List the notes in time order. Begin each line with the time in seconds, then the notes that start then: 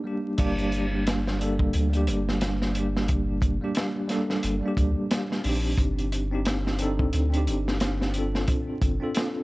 0.04 G3 A#3 D4 G4
0.38 G1 G3 A#3 D4 G4, kick, closed hi-hat, crash
0.58 closed hi-hat
0.72 closed hi-hat
0.91 G3 A#3 D4
0.95 G4
1.07 snare, closed hi-hat
1.27 snare
1.39 G3 A#3 D4 A4, closed hi-hat
1.59 kick
1.73 D2, closed hi-hat
1.90 G3 A#3, closed hi-hat
1.95 D4 G4
2.07 G1, closed hi-hat
2.29 snare
2.41 snare, closed hi-hat
2.62 snare
2.72 G3 A#3, closed hi-hat
2.77 D4 G4
2.97 snare
3.08 kick, closed hi-hat
3.42 G1, kick, closed hi-hat
3.61 G3 A#3 D4 G4
3.75 snare, closed hi-hat
4.08 G3 A#3 D4 A4, snare, closed hi-hat
4.30 snare
4.43 G1, closed hi-hat
4.61 G3 A#3
4.65 D4 G4
4.77 D2, kick, closed hi-hat
5.11 snare, closed hi-hat
5.32 snare
5.42 A#1 C4 D4, open hi-hat
5.46 D#4 G4
5.78 G1, kick, closed hi-hat
5.99 closed hi-hat
6.12 closed hi-hat
6.31 C4 D4 D#4 G4
6.45 snare, closed hi-hat
6.67 snare
6.78 C4 D4 D#4, closed hi-hat
6.82 A4
6.99 kick
7.13 D2, closed hi-hat
7.30 C4 D4, closed hi-hat
7.35 D#4 G4
7.47 G1, closed hi-hat
7.68 snare
7.80 snare, closed hi-hat
8.01 snare
8.11 C4 D4, closed hi-hat
8.17 F4 A4
8.35 snare
8.48 kick, closed hi-hat
8.82 G1, kick, closed hi-hat
9.00 C4 D4 F4 A4
9.15 snare, closed hi-hat